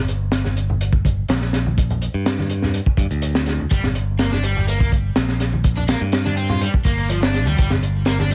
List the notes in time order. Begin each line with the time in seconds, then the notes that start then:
Already playing: G1
0.08 closed hi-hat
0.32 snare, closed hi-hat
0.45 snare, high conga
0.57 closed hi-hat
0.70 low conga
0.81 closed hi-hat
0.92 kick
1.05 kick, closed hi-hat, high conga
1.28 A#1, snare, closed hi-hat
1.41 snare
1.53 snare, closed hi-hat
1.66 high conga
1.78 kick, closed hi-hat
1.90 closed hi-hat, low conga
2.02 closed hi-hat
2.14 G2
2.26 snare, closed hi-hat
2.39 snare, high conga
2.50 closed hi-hat
2.62 snare, low conga
2.74 closed hi-hat
2.86 kick
2.97 G2, kick, closed hi-hat, high conga
3.11 D2, closed hi-hat
3.22 closed hi-hat
3.35 snare
3.46 snare, closed hi-hat
3.60 high conga
3.71 G1 G3, kick, closed hi-hat
3.84 snare, low conga
3.95 closed hi-hat
4.19 A#3, snare, closed hi-hat
4.32 D4, snare, high conga
4.43 G3, closed hi-hat
4.56 low conga
4.68 A#3, closed hi-hat
4.80 A#3, kick
4.92 kick, closed hi-hat, high conga
5.16 A#1, snare, closed hi-hat
5.29 snare
5.40 snare, closed hi-hat
5.53 high conga
5.64 kick, closed hi-hat
5.77 D4, closed hi-hat, low conga
5.88 A#3, snare, closed hi-hat
6.01 G2
6.12 snare, closed hi-hat
6.25 D4, snare, high conga
6.37 C4, closed hi-hat
6.49 F4, snare, low conga
6.61 G3, closed hi-hat
6.74 kick
6.85 G1 A#3, kick, closed hi-hat, high conga
6.97 closed hi-hat
7.09 F3, closed hi-hat
7.22 D4, snare
7.33 snare, closed hi-hat
7.46 D2 G3, high conga
7.58 G1 G3, kick, closed hi-hat
7.70 snare, low conga
7.83 closed hi-hat
8.06 A#3, snare, closed hi-hat
8.19 D4, snare, high conga
8.31 G3, closed hi-hat